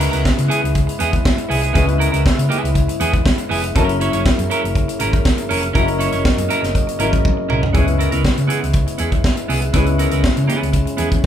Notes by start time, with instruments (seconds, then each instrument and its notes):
Already playing: french horn section C#3 G#3 B3 E4, grand piano G#3 C#4 E4 B4
0.00 clean electric guitar B3 E4 A#4, closed hi-hat
0.11 fingered electric bass C#2, clean electric guitar B3 E4 A#4, closed hi-hat
0.25 kick, snare
0.37 fingered electric bass C#3, muted clean electric guitar stroke, closed hi-hat
0.48 clean electric guitar B3 E4 G#4, closed hi-hat
0.62 fingered electric bass C#2, muted clean electric guitar stroke, closed hi-hat
0.74 muted clean electric guitar stroke, kick, closed hi-hat
0.87 muted clean electric guitar stroke, closed hi-hat
0.99 fingered electric bass E2, clean electric guitar B3 E4 G#4, closed hi-hat
1.12 muted clean electric guitar stroke, kick, closed hi-hat
1.24 muted clean electric guitar stroke, kick, snare
1.38 muted clean electric guitar stroke, closed hi-hat
1.49 fingered electric bass C2, clean electric guitar B3 E4 G#4, open hi-hat
1.62 clean electric guitar B3 E4 G#4, closed hi-hat
1.73 fingered electric bass C#2, grand piano G#3 C#4 E4, clean electric guitar B3 E4 G#4, kick, closed hi-hat
1.77 grand piano B4
1.87 muted clean electric guitar stroke, closed hi-hat
1.98 clean electric guitar B3 E4 A#4, closed hi-hat
2.12 fingered electric bass C#2, clean electric guitar B3 E4 A#4, closed hi-hat
2.26 muted fingered electric bass stroke, kick, snare
2.37 fingered electric bass C#3, muted clean electric guitar stroke, closed hi-hat
2.49 clean electric guitar B3 E4 G#4, closed hi-hat
2.63 fingered electric bass C#2, muted clean electric guitar stroke, closed hi-hat
2.74 muted clean electric guitar stroke, kick, closed hi-hat
2.89 muted clean electric guitar stroke, closed hi-hat
3.00 fingered electric bass E2, clean electric guitar B3 E4 G#4, closed hi-hat
3.13 muted clean electric guitar stroke, kick, closed hi-hat
3.26 kick, snare
3.38 muted clean electric guitar stroke, closed hi-hat
3.49 fingered electric bass F1, clean electric guitar B3 E4 G#4, open hi-hat
3.63 muted clean electric guitar stroke, closed hi-hat
3.75 fingered electric bass F#1, grand piano F#3 C#4 E4 A#4, french horn section F#3 A#3, clean electric guitar C#4 E4 A#4, kick, closed hi-hat
3.88 muted clean electric guitar stroke, closed hi-hat
4.00 clean electric guitar C#4 E4 C#5, closed hi-hat
4.13 fingered electric bass F#1, clean electric guitar C#4 E4 C#5, closed hi-hat
4.26 muted fingered electric bass stroke, kick, snare
4.38 fingered electric bass F#2, muted clean electric guitar stroke, closed hi-hat
4.50 clean electric guitar C#4 E4 A#4, closed hi-hat
4.63 fingered electric bass F#1, muted clean electric guitar stroke, closed hi-hat
4.75 muted clean electric guitar stroke, kick, closed hi-hat
4.88 muted clean electric guitar stroke, closed hi-hat
4.99 fingered electric bass G#1, clean electric guitar C#4 E4 A#4, closed hi-hat
5.13 muted clean electric guitar stroke, kick, closed hi-hat
5.25 kick, snare
5.38 muted clean electric guitar stroke, closed hi-hat
5.49 fingered electric bass F1, clean electric guitar C#4 E4 A#4, open hi-hat
5.62 muted clean electric guitar stroke, closed hi-hat
5.73 fingered electric bass F#1, grand piano F#3 C#4 E4 A#4, clean electric guitar C#4 E4 A#4, french horn section D#5, kick, closed hi-hat
5.87 muted clean electric guitar stroke, closed hi-hat
5.99 clean electric guitar C#4 E4 C#5, closed hi-hat
6.12 fingered electric bass F#1, clean electric guitar C#4 E4 C#5, closed hi-hat
6.25 muted fingered electric bass stroke, kick, snare
6.38 fingered electric bass F#2, muted clean electric guitar stroke, closed hi-hat
6.49 clean electric guitar C#4 E4 A#4, closed hi-hat
6.62 fingered electric bass F#1, muted clean electric guitar stroke, snare, closed hi-hat
6.74 muted clean electric guitar stroke, kick, closed hi-hat
6.87 muted clean electric guitar stroke, closed hi-hat
6.99 fingered electric bass G#1, grand piano F#3 C#4 E4 A#4, clean electric guitar C#4 E4 A#4, closed hi-hat
7.12 muted clean electric guitar stroke, kick, closed hi-hat
7.25 kick, high tom
7.37 muted clean electric guitar stroke
7.49 fingered electric bass C2, clean electric guitar C#4 E4 A#4, mid tom
7.62 muted clean electric guitar stroke, floor tom
7.73 fingered electric bass C#2, french horn section G#3 B3 E4, grand piano G#3 C#4 E4 B4, clean electric guitar B3 E4 G#4, kick, closed hi-hat
7.87 muted clean electric guitar stroke, closed hi-hat
7.98 clean electric guitar B3 E4 A#4, closed hi-hat
8.11 fingered electric bass C#2, clean electric guitar B3 E4 A#4, closed hi-hat
8.25 muted fingered electric bass stroke, kick, snare
8.36 fingered electric bass C#3, muted clean electric guitar stroke, closed hi-hat
8.47 clean electric guitar B3 E4 G#4, closed hi-hat
8.61 fingered electric bass C#2, muted clean electric guitar stroke, closed hi-hat
8.73 muted clean electric guitar stroke, kick, closed hi-hat
8.87 muted clean electric guitar stroke, closed hi-hat
8.98 fingered electric bass E2, clean electric guitar B3 E4 G#4, closed hi-hat
9.12 muted clean electric guitar stroke, kick, closed hi-hat
9.24 kick, snare
9.36 muted clean electric guitar stroke, closed hi-hat
9.48 fingered electric bass C2, clean electric guitar B3 E4 G#4, open hi-hat
9.61 muted clean electric guitar stroke, closed hi-hat
9.73 fingered electric bass C#2, grand piano G#3 C#4 E4 B4, clean electric guitar B3 E4 G#4, french horn section C#4, kick, closed hi-hat
9.86 muted clean electric guitar stroke, closed hi-hat
9.98 clean electric guitar B3 E4 A#4, closed hi-hat
10.11 fingered electric bass C#2, clean electric guitar B3 E4 A#4, closed hi-hat
10.24 muted fingered electric bass stroke, kick, snare
10.37 fingered electric bass C#3, muted clean electric guitar stroke, closed hi-hat
10.48 clean electric guitar B3 E4 G#4, closed hi-hat
10.61 fingered electric bass C#2, muted clean electric guitar stroke, closed hi-hat
10.73 muted clean electric guitar stroke, kick, closed hi-hat
10.86 muted clean electric guitar stroke, closed hi-hat
10.97 fingered electric bass E2, clean electric guitar B3 E4 G#4, closed hi-hat
11.10 muted clean electric guitar stroke, kick, closed hi-hat